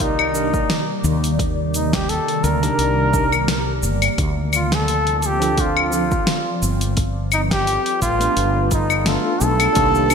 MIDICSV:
0, 0, Header, 1, 7, 480
1, 0, Start_track
1, 0, Tempo, 697674
1, 958, Time_signature, 4, 2, 24, 8
1, 6979, End_track
2, 0, Start_track
2, 0, Title_t, "Muted trumpet"
2, 0, Program_c, 0, 59
2, 14, Note_on_c, 0, 63, 84
2, 726, Note_off_c, 0, 63, 0
2, 1205, Note_on_c, 0, 63, 84
2, 1338, Note_on_c, 0, 67, 97
2, 1349, Note_off_c, 0, 63, 0
2, 1443, Note_on_c, 0, 69, 92
2, 1453, Note_off_c, 0, 67, 0
2, 1676, Note_on_c, 0, 70, 103
2, 1687, Note_off_c, 0, 69, 0
2, 2637, Note_off_c, 0, 70, 0
2, 3135, Note_on_c, 0, 65, 93
2, 3264, Note_on_c, 0, 69, 109
2, 3274, Note_off_c, 0, 65, 0
2, 3570, Note_off_c, 0, 69, 0
2, 3570, Note_on_c, 0, 69, 78
2, 3620, Note_on_c, 0, 67, 96
2, 3630, Note_off_c, 0, 69, 0
2, 3857, Note_on_c, 0, 65, 86
2, 3867, Note_off_c, 0, 67, 0
2, 4568, Note_off_c, 0, 65, 0
2, 5046, Note_on_c, 0, 63, 83
2, 5103, Note_off_c, 0, 63, 0
2, 5177, Note_on_c, 0, 67, 115
2, 5498, Note_off_c, 0, 67, 0
2, 5518, Note_on_c, 0, 65, 96
2, 5970, Note_off_c, 0, 65, 0
2, 6012, Note_on_c, 0, 63, 89
2, 6248, Note_on_c, 0, 65, 97
2, 6258, Note_off_c, 0, 63, 0
2, 6492, Note_on_c, 0, 69, 122
2, 6502, Note_off_c, 0, 65, 0
2, 6979, Note_off_c, 0, 69, 0
2, 6979, End_track
3, 0, Start_track
3, 0, Title_t, "Tine electric piano"
3, 0, Program_c, 1, 4
3, 0, Note_on_c, 1, 63, 75
3, 0, Note_on_c, 1, 67, 69
3, 0, Note_on_c, 1, 70, 84
3, 0, Note_on_c, 1, 74, 77
3, 205, Note_off_c, 1, 74, 0
3, 208, Note_off_c, 1, 63, 0
3, 211, Note_off_c, 1, 67, 0
3, 213, Note_off_c, 1, 70, 0
3, 229, Note_on_c, 1, 62, 69
3, 232, Note_on_c, 1, 63, 66
3, 238, Note_on_c, 1, 67, 66
3, 244, Note_on_c, 1, 70, 78
3, 355, Note_off_c, 1, 62, 0
3, 356, Note_off_c, 1, 63, 0
3, 359, Note_off_c, 1, 67, 0
3, 362, Note_off_c, 1, 70, 0
3, 1798, Note_on_c, 1, 62, 74
3, 1804, Note_on_c, 1, 63, 72
3, 1810, Note_on_c, 1, 67, 75
3, 1816, Note_on_c, 1, 70, 86
3, 2126, Note_off_c, 1, 62, 0
3, 2130, Note_off_c, 1, 63, 0
3, 2133, Note_off_c, 1, 67, 0
3, 2135, Note_off_c, 1, 70, 0
3, 2147, Note_on_c, 1, 62, 72
3, 2155, Note_on_c, 1, 63, 71
3, 2161, Note_on_c, 1, 67, 67
3, 2167, Note_on_c, 1, 70, 82
3, 2274, Note_off_c, 1, 62, 0
3, 2278, Note_off_c, 1, 63, 0
3, 2281, Note_off_c, 1, 67, 0
3, 2283, Note_off_c, 1, 70, 0
3, 3713, Note_on_c, 1, 60, 79
3, 3718, Note_on_c, 1, 62, 78
3, 3727, Note_on_c, 1, 65, 73
3, 3733, Note_on_c, 1, 69, 88
3, 4044, Note_off_c, 1, 60, 0
3, 4046, Note_off_c, 1, 62, 0
3, 4051, Note_off_c, 1, 65, 0
3, 4054, Note_off_c, 1, 69, 0
3, 4062, Note_on_c, 1, 60, 76
3, 4065, Note_on_c, 1, 62, 67
3, 4072, Note_on_c, 1, 65, 68
3, 4078, Note_on_c, 1, 69, 81
3, 4191, Note_off_c, 1, 60, 0
3, 4193, Note_off_c, 1, 62, 0
3, 4196, Note_off_c, 1, 65, 0
3, 4199, Note_off_c, 1, 69, 0
3, 5634, Note_on_c, 1, 57, 82
3, 5641, Note_on_c, 1, 59, 73
3, 5648, Note_on_c, 1, 62, 76
3, 5653, Note_on_c, 1, 65, 92
3, 5964, Note_off_c, 1, 57, 0
3, 5968, Note_off_c, 1, 59, 0
3, 5971, Note_off_c, 1, 62, 0
3, 5974, Note_off_c, 1, 65, 0
3, 6226, Note_on_c, 1, 57, 92
3, 6232, Note_on_c, 1, 59, 82
3, 6236, Note_on_c, 1, 62, 81
3, 6241, Note_on_c, 1, 69, 96
3, 6685, Note_off_c, 1, 62, 0
3, 6693, Note_on_c, 1, 62, 94
3, 6699, Note_off_c, 1, 57, 0
3, 6702, Note_off_c, 1, 59, 0
3, 6707, Note_off_c, 1, 69, 0
3, 6709, Note_on_c, 1, 51, 86
3, 6717, Note_on_c, 1, 67, 93
3, 6728, Note_on_c, 1, 58, 106
3, 6979, Note_off_c, 1, 51, 0
3, 6979, Note_off_c, 1, 58, 0
3, 6979, Note_off_c, 1, 62, 0
3, 6979, Note_off_c, 1, 67, 0
3, 6979, End_track
4, 0, Start_track
4, 0, Title_t, "Kalimba"
4, 0, Program_c, 2, 108
4, 6713, Note_on_c, 2, 58, 83
4, 6945, Note_off_c, 2, 58, 0
4, 6951, Note_on_c, 2, 62, 70
4, 6979, Note_off_c, 2, 62, 0
4, 6979, End_track
5, 0, Start_track
5, 0, Title_t, "Ambient pad"
5, 0, Program_c, 3, 92
5, 0, Note_on_c, 3, 48, 80
5, 0, Note_on_c, 3, 51, 94
5, 0, Note_on_c, 3, 55, 79
5, 0, Note_on_c, 3, 58, 73
5, 0, Note_on_c, 3, 74, 91
5, 2851, Note_off_c, 3, 51, 0
5, 2851, Note_off_c, 3, 58, 0
5, 2852, Note_off_c, 3, 48, 0
5, 2853, Note_off_c, 3, 55, 0
5, 2877, Note_on_c, 3, 53, 84
5, 2877, Note_on_c, 3, 60, 77
5, 4778, Note_off_c, 3, 60, 0
5, 4779, Note_off_c, 3, 53, 0
5, 4794, Note_on_c, 3, 69, 76
5, 4797, Note_on_c, 3, 65, 76
5, 4798, Note_on_c, 3, 71, 91
5, 4799, Note_on_c, 3, 55, 81
5, 6690, Note_off_c, 3, 74, 0
5, 6697, Note_off_c, 3, 69, 0
5, 6698, Note_off_c, 3, 65, 0
5, 6699, Note_off_c, 3, 55, 0
5, 6699, Note_off_c, 3, 71, 0
5, 6707, Note_on_c, 3, 55, 75
5, 6708, Note_on_c, 3, 58, 76
5, 6708, Note_on_c, 3, 74, 81
5, 6709, Note_on_c, 3, 51, 99
5, 6712, Note_on_c, 3, 48, 88
5, 6979, Note_off_c, 3, 48, 0
5, 6979, Note_off_c, 3, 51, 0
5, 6979, Note_off_c, 3, 55, 0
5, 6979, Note_off_c, 3, 58, 0
5, 6979, Note_off_c, 3, 74, 0
5, 6979, End_track
6, 0, Start_track
6, 0, Title_t, "Fretless electric bass"
6, 0, Program_c, 4, 35
6, 0, Note_on_c, 4, 36, 92
6, 423, Note_off_c, 4, 36, 0
6, 717, Note_on_c, 4, 39, 91
6, 1503, Note_off_c, 4, 39, 0
6, 1677, Note_on_c, 4, 38, 93
6, 1849, Note_off_c, 4, 38, 0
6, 1916, Note_on_c, 4, 36, 78
6, 2635, Note_on_c, 4, 31, 81
6, 2645, Note_off_c, 4, 36, 0
6, 2808, Note_off_c, 4, 31, 0
6, 2876, Note_on_c, 4, 38, 94
6, 4262, Note_off_c, 4, 38, 0
6, 4557, Note_on_c, 4, 31, 85
6, 5343, Note_off_c, 4, 31, 0
6, 5518, Note_on_c, 4, 33, 82
6, 5690, Note_off_c, 4, 33, 0
6, 5757, Note_on_c, 4, 31, 89
6, 6303, Note_off_c, 4, 31, 0
6, 6476, Note_on_c, 4, 35, 100
6, 6649, Note_off_c, 4, 35, 0
6, 6717, Note_on_c, 4, 36, 96
6, 6979, Note_off_c, 4, 36, 0
6, 6979, End_track
7, 0, Start_track
7, 0, Title_t, "Drums"
7, 0, Note_on_c, 9, 36, 86
7, 0, Note_on_c, 9, 46, 54
7, 2, Note_on_c, 9, 69, 30
7, 68, Note_off_c, 9, 36, 0
7, 69, Note_off_c, 9, 46, 0
7, 71, Note_off_c, 9, 69, 0
7, 130, Note_on_c, 9, 75, 73
7, 199, Note_off_c, 9, 75, 0
7, 239, Note_on_c, 9, 69, 66
7, 308, Note_off_c, 9, 69, 0
7, 369, Note_on_c, 9, 36, 98
7, 371, Note_on_c, 9, 69, 40
7, 438, Note_off_c, 9, 36, 0
7, 440, Note_off_c, 9, 69, 0
7, 480, Note_on_c, 9, 38, 76
7, 480, Note_on_c, 9, 46, 49
7, 482, Note_on_c, 9, 69, 33
7, 548, Note_off_c, 9, 38, 0
7, 548, Note_off_c, 9, 46, 0
7, 550, Note_off_c, 9, 69, 0
7, 718, Note_on_c, 9, 69, 77
7, 787, Note_off_c, 9, 69, 0
7, 852, Note_on_c, 9, 46, 43
7, 854, Note_on_c, 9, 69, 44
7, 921, Note_off_c, 9, 46, 0
7, 923, Note_off_c, 9, 69, 0
7, 958, Note_on_c, 9, 36, 105
7, 960, Note_on_c, 9, 46, 54
7, 962, Note_on_c, 9, 69, 32
7, 1027, Note_off_c, 9, 36, 0
7, 1029, Note_off_c, 9, 46, 0
7, 1031, Note_off_c, 9, 69, 0
7, 1199, Note_on_c, 9, 46, 29
7, 1201, Note_on_c, 9, 69, 72
7, 1268, Note_off_c, 9, 46, 0
7, 1270, Note_off_c, 9, 69, 0
7, 1329, Note_on_c, 9, 36, 99
7, 1330, Note_on_c, 9, 38, 74
7, 1330, Note_on_c, 9, 46, 44
7, 1332, Note_on_c, 9, 69, 42
7, 1398, Note_off_c, 9, 36, 0
7, 1399, Note_off_c, 9, 38, 0
7, 1399, Note_off_c, 9, 46, 0
7, 1401, Note_off_c, 9, 69, 0
7, 1440, Note_on_c, 9, 46, 52
7, 1442, Note_on_c, 9, 69, 31
7, 1509, Note_off_c, 9, 46, 0
7, 1511, Note_off_c, 9, 69, 0
7, 1572, Note_on_c, 9, 46, 40
7, 1640, Note_off_c, 9, 46, 0
7, 1678, Note_on_c, 9, 46, 29
7, 1680, Note_on_c, 9, 69, 75
7, 1747, Note_off_c, 9, 46, 0
7, 1749, Note_off_c, 9, 69, 0
7, 1810, Note_on_c, 9, 46, 41
7, 1812, Note_on_c, 9, 69, 42
7, 1878, Note_off_c, 9, 46, 0
7, 1881, Note_off_c, 9, 69, 0
7, 1918, Note_on_c, 9, 46, 54
7, 1921, Note_on_c, 9, 69, 31
7, 1987, Note_off_c, 9, 46, 0
7, 1989, Note_off_c, 9, 69, 0
7, 2157, Note_on_c, 9, 36, 97
7, 2159, Note_on_c, 9, 69, 68
7, 2226, Note_off_c, 9, 36, 0
7, 2227, Note_off_c, 9, 69, 0
7, 2287, Note_on_c, 9, 75, 55
7, 2289, Note_on_c, 9, 69, 38
7, 2356, Note_off_c, 9, 75, 0
7, 2358, Note_off_c, 9, 69, 0
7, 2396, Note_on_c, 9, 38, 76
7, 2396, Note_on_c, 9, 46, 56
7, 2398, Note_on_c, 9, 69, 32
7, 2464, Note_off_c, 9, 38, 0
7, 2464, Note_off_c, 9, 46, 0
7, 2467, Note_off_c, 9, 69, 0
7, 2634, Note_on_c, 9, 69, 78
7, 2703, Note_off_c, 9, 69, 0
7, 2766, Note_on_c, 9, 46, 42
7, 2766, Note_on_c, 9, 75, 76
7, 2768, Note_on_c, 9, 69, 43
7, 2835, Note_off_c, 9, 46, 0
7, 2835, Note_off_c, 9, 75, 0
7, 2837, Note_off_c, 9, 69, 0
7, 2878, Note_on_c, 9, 36, 105
7, 2878, Note_on_c, 9, 46, 57
7, 2880, Note_on_c, 9, 69, 31
7, 2947, Note_off_c, 9, 36, 0
7, 2947, Note_off_c, 9, 46, 0
7, 2949, Note_off_c, 9, 69, 0
7, 3115, Note_on_c, 9, 46, 32
7, 3115, Note_on_c, 9, 75, 61
7, 3117, Note_on_c, 9, 69, 71
7, 3184, Note_off_c, 9, 46, 0
7, 3184, Note_off_c, 9, 75, 0
7, 3186, Note_off_c, 9, 69, 0
7, 3247, Note_on_c, 9, 38, 72
7, 3247, Note_on_c, 9, 46, 46
7, 3250, Note_on_c, 9, 69, 42
7, 3316, Note_off_c, 9, 38, 0
7, 3316, Note_off_c, 9, 46, 0
7, 3318, Note_off_c, 9, 69, 0
7, 3358, Note_on_c, 9, 46, 53
7, 3360, Note_on_c, 9, 69, 29
7, 3427, Note_off_c, 9, 46, 0
7, 3429, Note_off_c, 9, 69, 0
7, 3487, Note_on_c, 9, 46, 46
7, 3555, Note_off_c, 9, 46, 0
7, 3594, Note_on_c, 9, 46, 28
7, 3596, Note_on_c, 9, 69, 67
7, 3663, Note_off_c, 9, 46, 0
7, 3665, Note_off_c, 9, 69, 0
7, 3727, Note_on_c, 9, 46, 45
7, 3729, Note_on_c, 9, 69, 42
7, 3796, Note_off_c, 9, 46, 0
7, 3798, Note_off_c, 9, 69, 0
7, 3836, Note_on_c, 9, 46, 56
7, 3838, Note_on_c, 9, 36, 87
7, 3838, Note_on_c, 9, 69, 30
7, 3904, Note_off_c, 9, 46, 0
7, 3907, Note_off_c, 9, 36, 0
7, 3907, Note_off_c, 9, 69, 0
7, 3967, Note_on_c, 9, 75, 75
7, 4036, Note_off_c, 9, 75, 0
7, 4075, Note_on_c, 9, 69, 60
7, 4144, Note_off_c, 9, 69, 0
7, 4208, Note_on_c, 9, 36, 95
7, 4208, Note_on_c, 9, 69, 39
7, 4276, Note_off_c, 9, 69, 0
7, 4277, Note_off_c, 9, 36, 0
7, 4313, Note_on_c, 9, 38, 75
7, 4313, Note_on_c, 9, 46, 54
7, 4315, Note_on_c, 9, 69, 31
7, 4382, Note_off_c, 9, 38, 0
7, 4382, Note_off_c, 9, 46, 0
7, 4384, Note_off_c, 9, 69, 0
7, 4559, Note_on_c, 9, 69, 73
7, 4628, Note_off_c, 9, 69, 0
7, 4686, Note_on_c, 9, 46, 48
7, 4688, Note_on_c, 9, 69, 41
7, 4755, Note_off_c, 9, 46, 0
7, 4757, Note_off_c, 9, 69, 0
7, 4794, Note_on_c, 9, 46, 56
7, 4796, Note_on_c, 9, 69, 33
7, 4797, Note_on_c, 9, 36, 106
7, 4863, Note_off_c, 9, 46, 0
7, 4865, Note_off_c, 9, 69, 0
7, 4866, Note_off_c, 9, 36, 0
7, 5034, Note_on_c, 9, 46, 32
7, 5034, Note_on_c, 9, 75, 61
7, 5036, Note_on_c, 9, 69, 73
7, 5103, Note_off_c, 9, 46, 0
7, 5103, Note_off_c, 9, 75, 0
7, 5105, Note_off_c, 9, 69, 0
7, 5168, Note_on_c, 9, 36, 99
7, 5169, Note_on_c, 9, 38, 76
7, 5169, Note_on_c, 9, 46, 46
7, 5171, Note_on_c, 9, 69, 42
7, 5237, Note_off_c, 9, 36, 0
7, 5238, Note_off_c, 9, 38, 0
7, 5238, Note_off_c, 9, 46, 0
7, 5240, Note_off_c, 9, 69, 0
7, 5279, Note_on_c, 9, 46, 57
7, 5281, Note_on_c, 9, 69, 31
7, 5348, Note_off_c, 9, 46, 0
7, 5350, Note_off_c, 9, 69, 0
7, 5408, Note_on_c, 9, 46, 48
7, 5476, Note_off_c, 9, 46, 0
7, 5516, Note_on_c, 9, 46, 32
7, 5517, Note_on_c, 9, 36, 55
7, 5519, Note_on_c, 9, 69, 75
7, 5585, Note_off_c, 9, 46, 0
7, 5586, Note_off_c, 9, 36, 0
7, 5587, Note_off_c, 9, 69, 0
7, 5647, Note_on_c, 9, 46, 43
7, 5649, Note_on_c, 9, 69, 43
7, 5715, Note_off_c, 9, 46, 0
7, 5718, Note_off_c, 9, 69, 0
7, 5756, Note_on_c, 9, 46, 55
7, 5758, Note_on_c, 9, 69, 31
7, 5825, Note_off_c, 9, 46, 0
7, 5827, Note_off_c, 9, 69, 0
7, 5993, Note_on_c, 9, 46, 29
7, 5995, Note_on_c, 9, 69, 66
7, 5997, Note_on_c, 9, 36, 104
7, 6062, Note_off_c, 9, 46, 0
7, 6064, Note_off_c, 9, 69, 0
7, 6066, Note_off_c, 9, 36, 0
7, 6123, Note_on_c, 9, 75, 57
7, 6125, Note_on_c, 9, 69, 40
7, 6192, Note_off_c, 9, 75, 0
7, 6194, Note_off_c, 9, 69, 0
7, 6232, Note_on_c, 9, 38, 79
7, 6232, Note_on_c, 9, 46, 60
7, 6234, Note_on_c, 9, 69, 32
7, 6301, Note_off_c, 9, 38, 0
7, 6301, Note_off_c, 9, 46, 0
7, 6303, Note_off_c, 9, 69, 0
7, 6473, Note_on_c, 9, 69, 80
7, 6542, Note_off_c, 9, 69, 0
7, 6603, Note_on_c, 9, 46, 48
7, 6603, Note_on_c, 9, 75, 80
7, 6605, Note_on_c, 9, 69, 42
7, 6672, Note_off_c, 9, 46, 0
7, 6672, Note_off_c, 9, 75, 0
7, 6674, Note_off_c, 9, 69, 0
7, 6710, Note_on_c, 9, 46, 55
7, 6712, Note_on_c, 9, 69, 44
7, 6717, Note_on_c, 9, 36, 115
7, 6779, Note_off_c, 9, 46, 0
7, 6781, Note_off_c, 9, 69, 0
7, 6786, Note_off_c, 9, 36, 0
7, 6846, Note_on_c, 9, 69, 31
7, 6915, Note_off_c, 9, 69, 0
7, 6950, Note_on_c, 9, 46, 33
7, 6950, Note_on_c, 9, 75, 64
7, 6952, Note_on_c, 9, 69, 81
7, 6979, Note_off_c, 9, 46, 0
7, 6979, Note_off_c, 9, 69, 0
7, 6979, Note_off_c, 9, 75, 0
7, 6979, End_track
0, 0, End_of_file